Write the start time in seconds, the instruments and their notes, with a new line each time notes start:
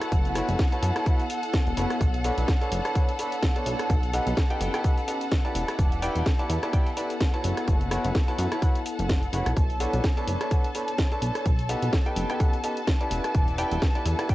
Already playing: ambient pad B3 E4 A4, grand piano E4 F#4 B4 C#5 A5, violin section A4 F#5
0.01 cross-stick, closed hi-hat, shaker
0.12 analog synth bass F#1, kick, closed hi-hat, shaker
0.25 closed hi-hat, shaker
0.35 grand piano E4 F#4 B4 C#5 F#5, ambient pad C#5, cross-stick, open hi-hat, shaker
0.49 analog synth bass F#1, closed hi-hat, shaker
0.59 kick, snare, closed hi-hat, shaker
0.72 grand piano E4 F#4 B4 C#5 A5, closed hi-hat, shaker
0.83 analog synth bass F#2, open hi-hat, shaker
0.96 grand piano E4 F#4 B4 C#5 A5, cross-stick, closed hi-hat, shaker
1.06 grand piano E4 F#4 B4 C#5 F#5, kick, closed hi-hat, shaker
1.20 closed hi-hat, shaker
1.30 open hi-hat, shaker
1.43 closed hi-hat, shaker
1.54 kick, snare, closed hi-hat, shaker
1.67 analog synth bass E1, closed hi-hat, shaker
1.77 analog synth bass F#1, grand piano E4 F#4 B4 C#5 F#5, open hi-hat, shaker
1.90 cross-stick, closed hi-hat, shaker
2.01 analog synth bass B1, kick, closed hi-hat, shaker
2.14 closed hi-hat, shaker
2.24 grand piano D4 A4 B4 C#5 F#5, open hi-hat, shaker
2.38 analog synth bass B1, closed hi-hat, shaker
2.48 kick, snare, closed hi-hat, shaker
2.61 grand piano D4 A4 B4 C#5 A5, closed hi-hat, shaker
2.72 analog synth bass F#1, open hi-hat, shaker
2.85 grand piano D4 A4 B4 C#5 A5, cross-stick, closed hi-hat, shaker
2.95 grand piano D4 A4 B4 C#5 F#5, kick, closed hi-hat, shaker
3.09 closed hi-hat, shaker
3.19 grand piano D4 A4 B4 C#5 B5, open hi-hat, shaker
3.32 closed hi-hat, shaker
3.43 kick, snare, closed hi-hat, shaker
3.56 grand piano D4 A4 B4 C#5 A5, closed hi-hat, shaker
3.66 analog synth bass B1, open hi-hat, shaker
3.79 cross-stick, closed hi-hat, shaker
3.90 analog synth bass B1, ambient pad C#4, kick, closed hi-hat, shaker
4.02 ambient pad F#5, closed hi-hat, shaker
4.13 grand piano D#4 G4 A4 B4 F#5, ambient pad D#5, open hi-hat, shaker
4.27 analog synth bass B1, closed hi-hat, shaker
4.37 kick, snare, closed hi-hat, shaker
4.50 grand piano D#4 G4 A4 B4 G5, closed hi-hat, shaker
4.61 analog synth bass F#1, open hi-hat, shaker
4.65 ambient pad B4
4.74 grand piano D#4 G4 A4 B4 G5, cross-stick, closed hi-hat, shaker
4.84 grand piano D#4 G4 A4 B4 F#5, kick, closed hi-hat, shaker
4.98 closed hi-hat, shaker
5.08 grand piano D#4 G4 A4 B4 A5, open hi-hat, shaker
5.21 closed hi-hat, shaker
5.31 kick, snare, closed hi-hat, shaker
5.45 grand piano E4 G4 B4 D5 A5, closed hi-hat, shaker
5.55 analog synth bass E1, ambient pad B3, open hi-hat, shaker
5.68 cross-stick, closed hi-hat, shaker
5.77 analog synth bass E1, ambient pad A4, kick, closed hi-hat, shaker
5.92 closed hi-hat, shaker
5.98 ambient pad E4 D5
6.02 grand piano E4 G4 B4 D5 G5, open hi-hat, shaker
6.16 analog synth bass E1, closed hi-hat, shaker
6.26 kick, snare, closed hi-hat, shaker
6.39 grand piano E4 G4 B4 D5 A5, closed hi-hat, shaker
6.50 analog synth bass E2, open hi-hat, shaker
6.63 grand piano E4 G4 B4 D5 A5, cross-stick, closed hi-hat, shaker
6.73 grand piano E4 G4 B4 D5 G5, kick, closed hi-hat, shaker
6.86 closed hi-hat, shaker
6.97 grand piano E4 G4 B4 D5 B5, open hi-hat, shaker
7.10 closed hi-hat, shaker
7.20 kick, snare, closed hi-hat, shaker
7.34 grand piano E4 F#4 B4 C#5 A5, closed hi-hat, shaker
7.44 analog synth bass F#1, open hi-hat, shaker
7.57 cross-stick, closed hi-hat, shaker
7.68 analog synth bass F#1, kick, closed hi-hat, shaker
7.81 closed hi-hat, shaker
7.91 grand piano E4 F#4 B4 C#5 F#5, cross-stick, open hi-hat, shaker
8.05 analog synth bass F#1, closed hi-hat, shaker
8.15 kick, snare, closed hi-hat, shaker
8.28 grand piano E4 F#4 B4 C#5 A5, closed hi-hat, shaker
8.38 analog synth bass F#2, ambient pad C#5, open hi-hat, shaker
8.52 grand piano E4 F#4 B4 C#5 A5, cross-stick, closed hi-hat, shaker
8.62 grand piano E4 F#4 B4 C#5 F#5, kick, closed hi-hat, shaker
8.75 closed hi-hat, shaker
8.86 open hi-hat, shaker
8.99 analog synth bass F#1, closed hi-hat, shaker
9.09 kick, snare, closed hi-hat, shaker
9.23 closed hi-hat, shaker
9.33 analog synth bass F#1, grand piano E4 F#4 B4 C#5 F#5, open hi-hat, shaker
9.46 analog synth bass B1, cross-stick, closed hi-hat, shaker
9.57 analog synth bass B1, violin section A4 A5, kick, closed hi-hat, shaker
9.70 closed hi-hat, shaker
9.80 grand piano D4 A4 B4 C#5 F#5, open hi-hat, shaker
9.93 analog synth bass B1, closed hi-hat, shaker
10.04 kick, snare, closed hi-hat, shaker
10.17 grand piano D4 A4 B4 C#5 A5, closed hi-hat, shaker
10.27 analog synth bass F#1, open hi-hat, shaker
10.41 grand piano D4 A4 B4 C#5 A5, cross-stick, closed hi-hat, shaker
10.51 grand piano D4 A4 B4 C#5 F#5, kick, closed hi-hat, shaker
10.64 closed hi-hat, shaker
10.75 grand piano D4 A4 B4 C#5 B5, open hi-hat, shaker
10.88 closed hi-hat, shaker
10.98 kick, snare, closed hi-hat, shaker
11.12 grand piano D4 A4 B4 C#5 A5, closed hi-hat, shaker
11.22 analog synth bass B1, open hi-hat, shaker
11.35 cross-stick, closed hi-hat, shaker
11.46 analog synth bass B1, ambient pad C#4, kick, closed hi-hat, shaker
11.52 ambient pad F#5
11.59 closed hi-hat, shaker
11.69 grand piano D#4 G4 A4 B4 F#5, open hi-hat, shaker
11.82 analog synth bass B1, closed hi-hat, shaker
11.93 kick, snare, closed hi-hat, shaker
12.06 grand piano D#4 G4 A4 B4 G5, closed hi-hat, shaker
12.16 analog synth bass F#1, open hi-hat, shaker
12.21 ambient pad B4
12.30 grand piano D#4 G4 A4 B4 G5, cross-stick, closed hi-hat, shaker
12.40 grand piano D#4 G4 A4 B4 F#5, kick, closed hi-hat, shaker
12.53 closed hi-hat, shaker
12.64 grand piano D#4 G4 A4 B4 A5, open hi-hat, shaker
12.77 closed hi-hat, shaker
12.87 kick, snare, closed hi-hat, shaker
13.01 grand piano E4 G4 B4 D5 A5, closed hi-hat, shaker
13.11 analog synth bass E1, ambient pad B3, open hi-hat, shaker
13.24 ambient pad E4, cross-stick, closed hi-hat, shaker
13.31 analog synth bass E1, ambient pad A4, kick, closed hi-hat
13.35 shaker
13.48 closed hi-hat, shaker
13.58 grand piano E4 G4 B4 D5 G5, open hi-hat, shaker
13.72 analog synth bass E1, closed hi-hat, shaker
13.82 kick, snare, closed hi-hat, shaker
13.95 grand piano E4 G4 B4 D5 A5, closed hi-hat, shaker
14.06 analog synth bass E2, open hi-hat, shaker
14.19 grand piano E4 G4 B4 D5 A5, cross-stick, closed hi-hat, shaker
14.29 grand piano E4 G4 B4 D5 G5, kick, closed hi-hat, shaker